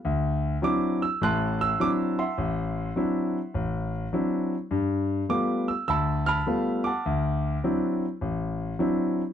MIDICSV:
0, 0, Header, 1, 2, 480
1, 0, Start_track
1, 0, Tempo, 583658
1, 31, Time_signature, 4, 2, 24, 8
1, 7674, End_track
2, 0, Start_track
2, 0, Title_t, "Grand piano"
2, 0, Program_c, 0, 0
2, 39, Note_on_c, 0, 38, 77
2, 452, Note_off_c, 0, 38, 0
2, 509, Note_on_c, 0, 54, 54
2, 513, Note_on_c, 0, 60, 50
2, 515, Note_on_c, 0, 62, 53
2, 518, Note_on_c, 0, 64, 64
2, 528, Note_on_c, 0, 86, 90
2, 817, Note_off_c, 0, 86, 0
2, 841, Note_on_c, 0, 88, 82
2, 846, Note_off_c, 0, 54, 0
2, 848, Note_off_c, 0, 60, 0
2, 849, Note_off_c, 0, 62, 0
2, 850, Note_off_c, 0, 64, 0
2, 985, Note_off_c, 0, 88, 0
2, 1000, Note_on_c, 0, 45, 70
2, 1001, Note_on_c, 0, 33, 69
2, 1013, Note_on_c, 0, 90, 108
2, 1018, Note_on_c, 0, 81, 70
2, 1021, Note_on_c, 0, 84, 72
2, 1300, Note_off_c, 0, 90, 0
2, 1326, Note_on_c, 0, 88, 100
2, 1412, Note_off_c, 0, 33, 0
2, 1412, Note_off_c, 0, 45, 0
2, 1477, Note_on_c, 0, 54, 53
2, 1477, Note_on_c, 0, 60, 53
2, 1480, Note_on_c, 0, 62, 49
2, 1482, Note_off_c, 0, 88, 0
2, 1483, Note_on_c, 0, 64, 58
2, 1491, Note_on_c, 0, 86, 104
2, 1560, Note_off_c, 0, 86, 0
2, 1787, Note_off_c, 0, 84, 0
2, 1799, Note_on_c, 0, 84, 78
2, 1801, Note_on_c, 0, 78, 59
2, 1802, Note_on_c, 0, 76, 55
2, 1810, Note_off_c, 0, 54, 0
2, 1810, Note_off_c, 0, 60, 0
2, 1811, Note_off_c, 0, 62, 0
2, 1813, Note_off_c, 0, 64, 0
2, 1931, Note_off_c, 0, 81, 0
2, 1956, Note_on_c, 0, 33, 75
2, 2370, Note_off_c, 0, 33, 0
2, 2434, Note_on_c, 0, 54, 51
2, 2436, Note_on_c, 0, 60, 46
2, 2443, Note_on_c, 0, 62, 49
2, 2444, Note_on_c, 0, 64, 63
2, 2768, Note_off_c, 0, 54, 0
2, 2769, Note_off_c, 0, 60, 0
2, 2773, Note_off_c, 0, 62, 0
2, 2773, Note_off_c, 0, 64, 0
2, 2915, Note_on_c, 0, 33, 68
2, 3202, Note_off_c, 0, 84, 0
2, 3203, Note_off_c, 0, 76, 0
2, 3203, Note_off_c, 0, 78, 0
2, 3329, Note_off_c, 0, 33, 0
2, 3394, Note_on_c, 0, 54, 54
2, 3398, Note_on_c, 0, 60, 48
2, 3400, Note_on_c, 0, 62, 50
2, 3404, Note_on_c, 0, 64, 56
2, 3728, Note_off_c, 0, 54, 0
2, 3730, Note_off_c, 0, 60, 0
2, 3732, Note_off_c, 0, 62, 0
2, 3733, Note_off_c, 0, 64, 0
2, 3872, Note_on_c, 0, 43, 73
2, 4288, Note_off_c, 0, 43, 0
2, 4351, Note_on_c, 0, 55, 50
2, 4354, Note_on_c, 0, 59, 52
2, 4356, Note_on_c, 0, 57, 52
2, 4358, Note_on_c, 0, 86, 90
2, 4360, Note_on_c, 0, 65, 57
2, 4673, Note_on_c, 0, 88, 75
2, 4684, Note_off_c, 0, 86, 0
2, 4687, Note_off_c, 0, 55, 0
2, 4689, Note_off_c, 0, 59, 0
2, 4690, Note_off_c, 0, 57, 0
2, 4692, Note_off_c, 0, 65, 0
2, 4821, Note_off_c, 0, 88, 0
2, 4836, Note_on_c, 0, 38, 76
2, 4836, Note_on_c, 0, 88, 92
2, 4850, Note_on_c, 0, 81, 72
2, 4852, Note_on_c, 0, 83, 65
2, 5151, Note_off_c, 0, 81, 0
2, 5151, Note_on_c, 0, 89, 106
2, 5156, Note_off_c, 0, 83, 0
2, 5163, Note_off_c, 0, 88, 0
2, 5164, Note_on_c, 0, 81, 71
2, 5169, Note_on_c, 0, 83, 79
2, 5251, Note_off_c, 0, 38, 0
2, 5316, Note_on_c, 0, 55, 55
2, 5321, Note_on_c, 0, 57, 52
2, 5323, Note_on_c, 0, 65, 61
2, 5324, Note_on_c, 0, 59, 51
2, 5599, Note_off_c, 0, 89, 0
2, 5626, Note_on_c, 0, 86, 83
2, 5632, Note_off_c, 0, 81, 0
2, 5644, Note_on_c, 0, 78, 58
2, 5645, Note_on_c, 0, 81, 59
2, 5650, Note_off_c, 0, 55, 0
2, 5652, Note_off_c, 0, 57, 0
2, 5654, Note_off_c, 0, 59, 0
2, 5654, Note_off_c, 0, 65, 0
2, 5768, Note_off_c, 0, 83, 0
2, 5803, Note_on_c, 0, 38, 76
2, 6215, Note_off_c, 0, 38, 0
2, 6281, Note_on_c, 0, 60, 56
2, 6283, Note_on_c, 0, 54, 54
2, 6285, Note_on_c, 0, 62, 50
2, 6288, Note_on_c, 0, 64, 56
2, 6557, Note_off_c, 0, 86, 0
2, 6566, Note_off_c, 0, 78, 0
2, 6566, Note_off_c, 0, 81, 0
2, 6613, Note_off_c, 0, 60, 0
2, 6614, Note_off_c, 0, 54, 0
2, 6615, Note_off_c, 0, 62, 0
2, 6617, Note_off_c, 0, 64, 0
2, 6755, Note_on_c, 0, 33, 73
2, 7171, Note_off_c, 0, 33, 0
2, 7229, Note_on_c, 0, 54, 51
2, 7230, Note_on_c, 0, 60, 49
2, 7236, Note_on_c, 0, 62, 51
2, 7237, Note_on_c, 0, 64, 61
2, 7568, Note_off_c, 0, 54, 0
2, 7568, Note_off_c, 0, 60, 0
2, 7572, Note_off_c, 0, 62, 0
2, 7572, Note_off_c, 0, 64, 0
2, 7674, End_track
0, 0, End_of_file